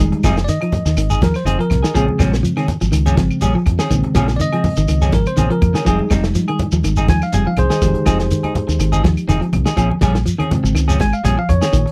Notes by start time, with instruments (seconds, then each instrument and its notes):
Already playing: tine electric piano G3
0.00 fingered electric bass F1, clean electric guitar D#3, tine electric piano G#3 D#4
0.12 muted clean electric guitar stroke, closed hi-hat, high conga
0.23 fingered electric bass F1, clean electric guitar F3 C4 D#4 G#4, kick, snare, closed hi-hat, high conga, low conga, claves, shekere
0.37 muted clean electric guitar stroke, snare, closed hi-hat, shekere
0.44 tine electric piano D5, shekere
0.49 clean electric guitar D#3, tine electric piano D#5, snare, closed hi-hat
0.61 clean electric guitar F3 D#4, muted clean electric guitar stroke, closed hi-hat, claves
0.72 muted clean electric guitar stroke, closed hi-hat, high conga, low conga, shekere
0.86 fingered electric bass D#2, clean electric guitar D#3, muted clean electric guitar stroke, snare, closed hi-hat, shekere
0.97 fingered electric bass G#1, clean electric guitar D#3, muted clean electric guitar stroke, closed hi-hat, claves, shekere
1.10 clean electric guitar D#4 G#4, closed hi-hat, high conga, shekere
1.21 fingered electric bass D#2, clean electric guitar F3, tine electric piano A#4, muted clean electric guitar stroke, kick, snare, closed hi-hat, high conga, low conga
1.34 tine electric piano C5, snare, closed hi-hat, claves, shekere
1.45 fingered electric bass F1, clean electric guitar C4 D#4 G#4, muted clean electric guitar stroke, closed hi-hat, high conga, shekere
1.59 clean electric guitar F3, tine electric piano A#4, muted clean electric guitar stroke, closed hi-hat
1.70 fingered electric bass C2, muted clean electric guitar stroke, kick, snare, closed hi-hat, high conga, low conga, claves, shekere
1.83 clean electric guitar D#3 D#4 G#4, snare, closed hi-hat, shekere
1.94 fingered electric bass A#1, tine electric piano C#3 G#3 C4 G#4, clean electric guitar F3 C4 C#4 G#4, kick, closed hi-hat, shekere
2.07 muted clean electric guitar stroke, high conga
2.19 fingered electric bass A#1, clean electric guitar F3 G3 C4 C#4, kick, snare, closed hi-hat, high conga, low conga, claves, shekere
2.32 muted clean electric guitar stroke, snare, closed hi-hat, shekere
2.43 clean electric guitar F3, closed hi-hat, shekere
2.57 clean electric guitar D#3 C4 C#4 G#4, snare, closed hi-hat, claves
2.68 muted clean electric guitar stroke, closed hi-hat, high conga, low conga, shekere
2.81 fingered electric bass G#1, clean electric guitar F3, muted clean electric guitar stroke, closed hi-hat, shekere
2.92 fingered electric bass C#2, clean electric guitar D#3, muted clean electric guitar stroke, closed hi-hat, claves, shekere
3.06 clean electric guitar F3 C4 C#4 G#4, closed hi-hat, high conga, shekere
3.16 fingered electric bass G#1, tine electric piano C#3 G#3 C4, clean electric guitar F3, muted clean electric guitar stroke, kick, snare, closed hi-hat, high conga
3.31 claves, shekere
3.41 fingered electric bass A#1, clean electric guitar F3 G3 C#4 G#4, closed hi-hat, high conga, shekere
3.55 clean electric guitar F3, muted clean electric guitar stroke
3.66 fingered electric bass F2, muted clean electric guitar stroke, kick, closed hi-hat, low conga, claves, shekere
3.79 clean electric guitar D#3 C4 C#4 G#4, snare, closed hi-hat, shekere
3.90 fingered electric bass A#1, tine electric piano C#3 G#3 C4, clean electric guitar D#3, kick, closed hi-hat, shekere
4.03 muted clean electric guitar stroke, closed hi-hat, high conga
4.15 fingered electric bass A#1, clean electric guitar F3 C4 C#4 G#4, kick, snare, closed hi-hat, high conga, low conga, claves, shekere
4.28 muted clean electric guitar stroke, snare, closed hi-hat, shekere
4.36 clean electric guitar D#3, tine electric piano D5, closed hi-hat, shekere
4.41 tine electric piano D#5
4.53 clean electric guitar F3 C4 G#4, closed hi-hat, claves
4.64 muted clean electric guitar stroke, open hi-hat, high conga, low conga, shekere
4.77 fingered electric bass G#1, clean electric guitar D#3, muted clean electric guitar stroke, closed hi-hat, shekere
4.88 fingered electric bass C#2, clean electric guitar D#3, muted clean electric guitar stroke, closed hi-hat, claves, shekere
5.02 clean electric guitar F3 C4 C#4 G#4, snare, closed hi-hat, high conga, shekere
5.12 fingered electric bass G#1, clean electric guitar F3, tine electric piano A#4, muted clean electric guitar stroke, kick, snare, closed hi-hat, high conga, low conga
5.26 tine electric piano C5, closed hi-hat, claves, shekere
5.37 fingered electric bass A#1, clean electric guitar D#3 F3 C4 C#4 G#4, kick, closed hi-hat, high conga, shekere
5.50 clean electric guitar F3, tine electric piano A#4, muted clean electric guitar stroke, closed hi-hat
5.62 fingered electric bass F2, muted clean electric guitar stroke, kick, closed hi-hat, high conga, low conga, claves, shekere
5.74 clean electric guitar D#3 C4 C#4 G#4, snare, closed hi-hat, shekere
5.85 fingered electric bass F1, clean electric guitar F3 C4 D#4 G#4, tine electric piano G3 G#3 D#4 G#4, kick, closed hi-hat, shekere
5.99 muted clean electric guitar stroke, high conga
6.10 fingered electric bass F1, clean electric guitar G3 C4 D#4, muted clean electric guitar stroke, kick, snare, closed hi-hat, high conga, claves, shekere
6.24 muted clean electric guitar stroke, snare, closed hi-hat, shekere
6.35 clean electric guitar F3, snare, closed hi-hat, shekere
6.48 clean electric guitar D#3 G#4, muted clean electric guitar stroke, closed hi-hat, claves
6.59 muted clean electric guitar stroke, closed hi-hat, high conga, low conga, shekere
6.72 fingered electric bass D#2, clean electric guitar F3, muted clean electric guitar stroke, closed hi-hat, shekere
6.84 fingered electric bass G#1, clean electric guitar D#3, muted clean electric guitar stroke, closed hi-hat, claves, shekere
6.96 clean electric guitar C4 D#4 G#4, closed hi-hat, high conga, shekere
7.08 fingered electric bass D#2, clean electric guitar F3, tine electric piano G#5, muted clean electric guitar stroke, kick, snare, closed hi-hat, high conga, low conga
7.21 tine electric piano F5, snare, claves, shekere
7.32 fingered electric bass F1, clean electric guitar G3 C4 G#4, tine electric piano G#5, muted clean electric guitar stroke, closed hi-hat, high conga, shekere
7.46 clean electric guitar F3, tine electric piano F5, muted clean electric guitar stroke
7.57 fingered electric bass C2, tine electric piano G#4 C5, muted clean electric guitar stroke, kick, closed hi-hat, low conga, claves, shekere
7.70 clean electric guitar D#3 D#4 G#4, snare, closed hi-hat, shekere
7.82 fingered electric bass F1, clean electric guitar D#3, tine electric piano G#3 D#4 G4, kick, snare, closed hi-hat, shekere
7.95 muted clean electric guitar stroke, closed hi-hat, high conga
8.06 fingered electric bass F1, clean electric guitar F3 C4 D#4 G#4, kick, snare, closed hi-hat, high conga, claves, shekere
8.19 muted clean electric guitar stroke, snare, closed hi-hat, shekere
8.30 clean electric guitar D#3, closed hi-hat, shekere
8.43 clean electric guitar D#4 G#4, closed hi-hat, high conga, claves
8.55 muted clean electric guitar stroke, closed hi-hat, high conga, low conga, shekere
8.67 fingered electric bass D#2, clean electric guitar D#3, muted clean electric guitar stroke, closed hi-hat, shekere
8.79 fingered electric bass G#1, clean electric guitar D#3, muted clean electric guitar stroke, closed hi-hat, claves, shekere
8.92 clean electric guitar C4 D#4 G#4, closed hi-hat, high conga, shekere
9.03 fingered electric bass D#2, clean electric guitar F3, muted clean electric guitar stroke, kick, snare, closed hi-hat, high conga, low conga
9.17 closed hi-hat, claves, shekere
9.28 fingered electric bass F1, clean electric guitar D#3 C4 D#4 G#4, closed hi-hat, high conga, shekere
9.41 clean electric guitar F3, muted clean electric guitar stroke, closed hi-hat
9.53 fingered electric bass C2, muted clean electric guitar stroke, kick, closed hi-hat, high conga, low conga, claves, shekere
9.66 clean electric guitar D#3 D#4 G#4, snare, closed hi-hat, shekere
9.77 fingered electric bass A#1, clean electric guitar F3 C4 C#4 G#4, muted clean electric guitar stroke, kick, closed hi-hat, shekere
9.91 muted clean electric guitar stroke, high conga
10.01 fingered electric bass A#1, clean electric guitar F3 G3 C#4 G#4, kick, snare, closed hi-hat, high conga, low conga, claves, shekere
10.15 muted clean electric guitar stroke, snare, closed hi-hat, shekere
10.26 clean electric guitar F3, closed hi-hat, shekere
10.38 clean electric guitar D#3 C4 C#4 G#4, closed hi-hat, high conga, claves
10.51 tine electric piano C#3 G#3 C4, muted clean electric guitar stroke, closed hi-hat, high conga, low conga, shekere
10.64 fingered electric bass G#1, muted clean electric guitar stroke, closed hi-hat, shekere
10.75 fingered electric bass C#2, clean electric guitar D#3, muted clean electric guitar stroke, closed hi-hat, claves, shekere
10.88 clean electric guitar F3 C4 C#4 G#4, closed hi-hat, shekere
10.99 fingered electric bass G#1, clean electric guitar G#3, tine electric piano G#5, muted clean electric guitar stroke, kick, snare, closed hi-hat, high conga, low conga
11.13 tine electric piano F5, claves, shekere
11.24 fingered electric bass A#1, clean electric guitar F3 G3 C4 C#4 G#4, tine electric piano G#5, closed hi-hat, high conga, shekere
11.37 clean electric guitar F3, tine electric piano F5, muted clean electric guitar stroke
11.49 fingered electric bass F2, tine electric piano C#5, muted clean electric guitar stroke, kick, closed hi-hat, high conga, low conga, claves, shekere
11.61 clean electric guitar D#3 C4 C#4 G#4, snare, closed hi-hat, shekere
11.73 fingered electric bass A#1, clean electric guitar D#3, kick, closed hi-hat, shekere
11.86 muted clean electric guitar stroke, closed hi-hat